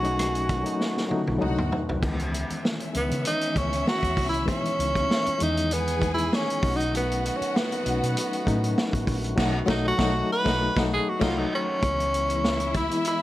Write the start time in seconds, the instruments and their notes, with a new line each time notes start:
Already playing: fingered electric bass B1, tonewheel organ D#3 A3 B3 F#4, reed electric piano F#3 A3 C#4 D#4, tenor saxophone F#4, string section G#4 G#5
0.03 reed electric piano F#3 A3 C#4 D#4, closed hi-hat
0.19 cross-stick, closed hi-hat
0.35 closed hi-hat
0.49 kick, closed hi-hat
0.64 reed electric piano F#3 A3 C#4 D#4, closed hi-hat
0.81 snare
0.97 snare
1.08 reed electric piano F#3 A3 C#4 D#4, muted fingered electric bass stroke, high tom
1.27 fingered electric bass B1, high tom
1.39 fingered electric bass C2, reed electric piano F#3 A3 D4 D#4, tonewheel organ C4 F#4, string section F#4 F#5, mid tom
1.58 fingered electric bass D2, mid tom
1.72 floor tom
1.89 fingered electric bass C2, floor tom
2.00 fingered electric bass C#2, reed electric piano D#3 E3 G#3 B3, string section C#4 E5, kick, crash
2.19 closed hi-hat
2.34 closed hi-hat
2.50 muted fingered electric bass stroke, closed hi-hat
2.65 snare
2.80 closed hi-hat
2.92 fingered electric bass C#2, reed electric piano E3 G#3 B3 C#4, closed hi-hat
2.97 tenor saxophone B3
3.02 reed electric piano D#3
3.11 fingered electric bass C#3, closed hi-hat
3.25 tenor saxophone D#4, closed hi-hat
3.41 closed hi-hat
3.54 fingered electric bass C#2, reed electric piano D#3 E3 G#3 B3, tenor saxophone C#4, kick, closed hi-hat
3.73 closed hi-hat
3.87 tenor saxophone F#4, snare
4.03 fingered electric bass D#2, kick, closed hi-hat
4.17 fingered electric bass C2, kick, open hi-hat
4.29 tenor saxophone E4
4.34 closed hi-hat
4.45 reed electric piano E3 G#3 B3 D#4, tenor saxophone C#4, kick, closed hi-hat
4.55 reed electric piano E4
4.65 closed hi-hat
4.79 fingered electric bass C#2, closed hi-hat
4.95 kick, closed hi-hat
5.11 snare
5.26 muted fingered electric bass stroke, closed hi-hat
5.38 fingered electric bass E2, reed electric piano D#3 E3 G#3 B3, closed hi-hat
5.43 tenor saxophone D#4
5.57 closed hi-hat
5.70 tenor saxophone B3, string section G#4 G#5, closed hi-hat
5.88 closed hi-hat
5.99 reed electric piano E3 G#3 B3 D#4, kick, closed hi-hat
6.14 tenor saxophone E4
6.18 closed hi-hat
6.33 tenor saxophone C#4, snare
6.50 closed hi-hat
6.61 fingered electric bass B1, reed electric piano F#3 A3 C#4 D#4, string section F#4 F#5, kick, open hi-hat
6.76 tenor saxophone D#4
6.80 closed hi-hat
6.91 tonewheel organ D#3 A3 B3 F#4, closed hi-hat
6.97 tenor saxophone B3
7.12 closed hi-hat
7.25 closed hi-hat
7.37 tenor saxophone C#4
7.41 muted fingered electric bass stroke, closed hi-hat
7.56 tenor saxophone B3, snare
7.72 closed hi-hat
7.83 fingered electric bass B1, reed electric piano F#3 A3 C#4 D#4, closed hi-hat
8.03 fingered electric bass B2, closed hi-hat
8.17 closed hi-hat
8.33 closed hi-hat
8.44 fingered electric bass A2, reed electric piano F#3 A3 C#4 D#4, kick, closed hi-hat
8.64 closed hi-hat
8.78 snare
8.93 fingered electric bass A1, kick, closed hi-hat
9.07 fingered electric bass A#1, kick, open hi-hat
9.24 closed hi-hat
9.36 fingered electric bass B1, reed electric piano F#3 A3 D#4, string section F#4 F#5, kick, snare, crash
9.66 fingered electric bass B1, reed electric piano F#3 A3 D#4, string section F#4 F#5, kick, snare
9.70 tenor saxophone D#4
9.88 tenor saxophone F#4
9.97 fingered electric bass B1, reed electric piano F#3 A3 D#4, string section F#4 F#5, kick, snare
10.33 tenor saxophone B4
10.45 fingered electric bass B1, reed electric piano F#3 A3 D#4, string section F#4 F#5, kick, snare
10.75 fingered electric bass B1, reed electric piano F#3 A3 D#4, string section F#4 F#5, kick, snare
10.93 tenor saxophone G#4
11.09 tenor saxophone F#4
11.20 fingered electric bass C2, reed electric piano F#3 A3 D#4, tonewheel organ A3 F#4 C5, tenor saxophone F4, string section F#4 F#5, kick, snare, crash
11.39 tenor saxophone D#4
11.55 tenor saxophone C#4
11.81 fingered electric bass C#2, reed electric piano E3 G#3 B3 E4, string section E4 E5, kick, closed hi-hat
12.00 closed hi-hat
12.14 closed hi-hat
12.28 reed electric piano E3 G#3 B3 E4, closed hi-hat
12.45 snare
12.60 closed hi-hat
12.74 tenor saxophone E4, kick, closed hi-hat
12.89 reed electric piano E3 G#3 B3 E4, closed hi-hat
13.05 tenor saxophone E4, closed hi-hat